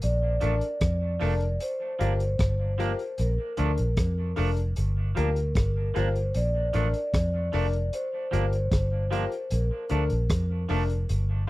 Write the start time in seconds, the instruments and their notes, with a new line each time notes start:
0.02 fingered electric bass A#1, vibraphone D5, closed hi-hat
0.41 fingered electric bass A1, clean electric guitar F3 A3 D4, upright piano D4 A4 A#4, closed hi-hat
0.61 closed hi-hat
0.81 fingered electric bass F2, kick, cross-stick, closed hi-hat
1.20 fingered electric bass F1, clean electric guitar F3 A3 D4, upright piano D4 A4 A#4, open hi-hat
1.41 closed hi-hat
1.60 vibraphone C5, closed hi-hat
1.99 fingered electric bass G1, clean electric guitar F3 A#3 D4, upright piano F4 G4 A#4, closed hi-hat
2.20 closed hi-hat
2.39 fingered electric bass G1, kick, cross-stick, closed hi-hat
2.78 clean electric guitar F3 A#3 D4, upright piano F4 G4 A#4, closed hi-hat
2.99 closed hi-hat
3.18 fingered electric bass A#1, vibraphone A#4, closed hi-hat
3.57 fingered electric bass D2, clean electric guitar F3 A3 D4, upright piano D4 A4 A#4, closed hi-hat
3.77 fingered electric bass A#1, closed hi-hat
3.97 fingered electric bass F2, kick, cross-stick, closed hi-hat
4.36 fingered electric bass F1, clean electric guitar F3 A3 D4, upright piano D4 A4 A#4, open hi-hat
4.57 closed hi-hat
4.76 fingered electric bass G1, closed hi-hat
5.15 fingered electric bass D2, clean electric guitar F3 A#3 D4, upright piano F4 G4 A#4, vibraphone A#4, closed hi-hat
5.36 closed hi-hat
5.55 fingered electric bass G1, kick, cross-stick, closed hi-hat
5.94 fingered electric bass G1, clean electric guitar F3 A#3 D4, upright piano F4 G4 A#4, vibraphone C5, closed hi-hat
6.15 closed hi-hat
6.34 fingered electric bass A#1, vibraphone D5, closed hi-hat
6.73 fingered electric bass A1, clean electric guitar F3 A3 D4, upright piano D4 A4 A#4, closed hi-hat
6.94 closed hi-hat
7.14 fingered electric bass F2, kick, cross-stick, closed hi-hat
7.52 fingered electric bass F1, clean electric guitar F3 A3 D4, upright piano D4 A4 A#4, open hi-hat
7.73 closed hi-hat
7.93 vibraphone C5, closed hi-hat
8.31 fingered electric bass G1, clean electric guitar F3 A#3 D4, upright piano F4 G4 A#4, closed hi-hat
8.53 closed hi-hat
8.72 fingered electric bass G1, kick, cross-stick, closed hi-hat
9.11 clean electric guitar F3 A#3 D4, upright piano F4 G4 A#4, closed hi-hat
9.32 closed hi-hat
9.51 fingered electric bass A#1, vibraphone A#4, closed hi-hat
9.89 fingered electric bass D2, clean electric guitar F3 A3 D4, upright piano D4 A4 A#4, closed hi-hat
10.10 fingered electric bass A#1, closed hi-hat
10.30 fingered electric bass F2, kick, cross-stick, closed hi-hat
10.69 fingered electric bass F1, clean electric guitar F3 A3 D4, upright piano D4 A4 A#4, open hi-hat
10.89 closed hi-hat
11.09 fingered electric bass G1, closed hi-hat